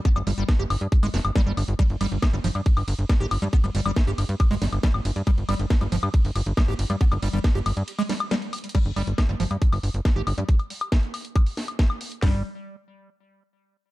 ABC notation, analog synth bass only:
X:1
M:4/4
L:1/16
Q:1/4=138
K:none
V:1 name="Analog synth bass" clef=bass
z G,,, G,,, G,,, z G,,, G,,, G,, z _A,,, F,,, G,,, z G,,, G,,, G,,, | z G,,, G,,, G,,, z G,,, G,,, G,, z G,,, G,,, G,,, z _A,,, G,,, G,, | z G,,, G,,, G,,, z G,,, G,,, G,, z G,,, G,,, G,,, z _A,,, G,,, G,, | z G,,, G,,, G,,, z G,,, G,,, G,, z G,,, G,,, G,,, z _A,,, G,,, G,, |
z G,,, G,,, G,,, z G,,, G,,, G,, z8 | z G,,, G,,, G,,, z G,,, G,,, G,, z G,,, G,,, G,,, z _A,,, G,,, G,, | z16 | G,,,2 z12 z2 |]